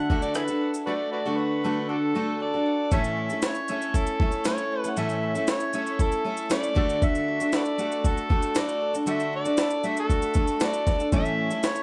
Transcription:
Already playing: A3 F#4 A4 F#5
0.10 D3 A3 D4 F#4 A4, kick
0.22 D5, shaker
0.35 E4 G#4 A4 B4, cross-stick, shaker
0.48 D4 F#4 A4, shaker
0.61 F#5
0.74 shaker
0.86 A3 D4 F#4 A4 B4 D5
1.12 F#4 B4 D5
1.25 D3 A3 D4 F#4 A4
1.37 B4 F#5
1.64 D3 A3 D4 F#4 A4
1.89 D4 F#4 A4 F#5
2.15 D3 A3 D4 F#4 A4
2.40 A4 D5
2.54 D4 F#4 A4
2.66 F#5
2.91 A2 E3 A3 C#4 E4 A4 C#5 E5, kick, shaker
3.04 shaker
3.17 E4
3.30 A3 C#4 E4 A4, shaker
3.42 C#5, snare, shaker
3.55 shaker
3.68 A3 C#4 E4 A4 E5, shaker
3.82 shaker
3.94 E4 A4, kick, shaker
4.07 shaker
4.20 A3 C#4 E4 A4 C#5, kick
4.32 shaker
4.45 A3 C#4 E4 A4 C#5, snare, shaker
4.58 shaker
4.72 C#5
4.79 B4
4.84 A3 C#4 E4 A4, shaker
4.91 F#5
4.97 A2 E3 A3 C#4 E4 A4 E5, shaker
5.10 shaker
5.23 E4
5.35 A3 C#4 E4 A4, shaker
5.48 C#5, snare, shaker
5.60 shaker
5.73 A3 C#4 E4 A4 E5, shaker
5.87 shaker
5.99 E4 A4, kick, shaker
6.12 shaker
6.25 A3 C#4 E4 A4
6.37 shaker
6.50 A3 C#4 E4 A4 D5, snare, shaker
6.64 shaker
6.75 D3 A3 D4 F#4 A4, kick
6.90 shaker
7.02 A3 E5, kick, shaker
7.15 shaker
7.28 F#4
7.40 D4 F#4 A4, shaker
7.53 F#4 A4 B4 D5, snare, shaker
7.66 shaker
7.78 A3 D4 F#4 A4 F#5, shaker
7.92 shaker
8.04 F#4 A4, kick, shaker
8.18 shaker
8.29 A3 D4 F#4 A4, kick
8.43 shaker
8.55 A3 D4 F#4 A4 D5, snare, shaker
8.69 shaker
8.82 A4
8.93 D4 F#4 A4, shaker
9.06 D3 A3 D4 F#4 A4 E5, shaker
9.20 shaker
9.33 F#4 D5
9.45 D4 F#4 A4, shaker
9.58 A4, snare, shaker
9.71 shaker
9.84 A3 D4 F#4 A4 E5 F#5, shaker
9.97 A4, shaker
10.10 F#4, kick, shaker
10.22 shaker
10.34 A3 D4 F#4 A4, kick, shaker
10.48 shaker
10.60 A3 D4 F#4 A4 D5, snare, shaker
10.74 shaker
10.86 A4, kick, snare, shaker
10.98 D4 F#4 A4, shaker
11.12 A2 E3 A3 C#4 E4 A4 E5, kick, shaker
11.26 shaker
11.38 E4
11.51 A3 C#4 E4 A4, shaker
11.63 C#5, snare, shaker
11.76 shaker

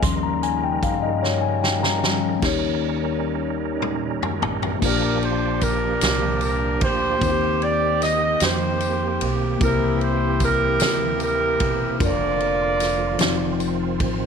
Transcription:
Already playing: C#3 A#3 A#4
0.02 D#2 F3 G3 C#4 D#4 C6, kick, closed hi-hat
0.23 A#5
0.43 G#5, closed hi-hat
0.64 G5
0.82 G2 F5, kick, closed hi-hat
1.03 D#5
1.23 C#5, snare
1.42 G#5
1.63 G5, snare
1.83 A#5, snare
2.03 F3 G3 C#4, snare
2.39 D#2 D#3 G3 A#3 C#4 D#4 A#4, kick, crash
2.43 G3 A#3 G4 C#5, snare
3.82 mid tom
4.23 floor tom
4.42 A1, floor tom
4.62 floor tom
4.79 A#1 A#2 A#3 D4 F4 G4, kick, crash
4.83 F3 A#3 D4 G4 A#4 D5, tambourine
5.22 C5, ride
5.61 D4 G4 A#4, kick, ride, tambourine
6.01 C2, snare, ride, tambourine
6.41 A#4, ride, tambourine
6.81 D2 G4 C5, kick, ride
7.19 D#2 D#3 A#3 C4 D#4, kick, ride
7.23 F4 C5, tambourine
7.31 G4
7.62 D5, ride
8.02 D#5, snare, ride, tambourine
8.40 F2 G4 C5, snare, ride, tambourine
8.80 ride, tambourine
9.21 B1, ride
9.58 C2 C3 E3 A#3 C4 E4, kick, ride
9.62 E4 G4 A#4 C5, tambourine
10.01 C5, ride
10.40 kick, ride, tambourine
10.45 E4 G4 A#4
10.80 D2, snare, ride, tambourine
11.20 A#4, ride, tambourine
11.24 E4 G4
11.60 E1, kick, ride
11.99 F1 D3 F3 D4 F4 A#4, kick, ride, tambourine
12.04 A#4 D5
12.40 ride
12.80 snare, ride, tambourine
13.19 F1 D#3 F3 C4 D#4 F4 C5, snare, ride, tambourine
13.60 ride, tambourine
14.00 A1, kick, ride

